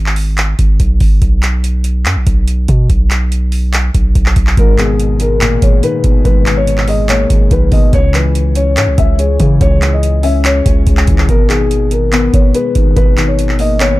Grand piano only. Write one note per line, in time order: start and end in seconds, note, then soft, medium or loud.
4.57 5.62 G#2 loud
4.78 5.83 B2 medium
5.20 5.61 G#3 medium
5.41 6.46 A#2 loud
5.63 6.67 G#3 medium
5.83 6.88 D#3 medium
6.04 6.45 B2 medium
6.25 7.30 G#2 loud
6.46 7.51 B2 medium
6.88 7.29 G#3 medium
7.09 7.93 A#3 medium
7.30 7.93 G#3 medium
7.51 7.93 D#3 medium
7.72 7.93 B2 medium
7.93 8.98 C#3 medium
8.14 9.19 E3 medium
8.56 8.97 C#4 medium
8.77 9.82 C#5 medium
8.98 10.03 C#4 medium
9.19 10.24 G#3 medium
9.40 9.80 E3 medium
9.61 10.66 C#3 medium
9.82 10.87 E3 medium
10.24 10.64 C#4 medium
10.45 11.29 C#5 medium
10.66 11.29 C#4 medium
10.87 11.29 G#3 medium
11.08 11.29 E3 medium
11.29 12.34 B2 loud
11.50 12.55 D#3 medium
12.13 13.18 B3 loud
12.55 13.59 G#3 medium
12.76 13.16 D#3 medium
12.97 14.00 B2 medium
13.17 14.00 D#3 medium
13.59 14.00 A#3 medium
13.80 14.00 B3 medium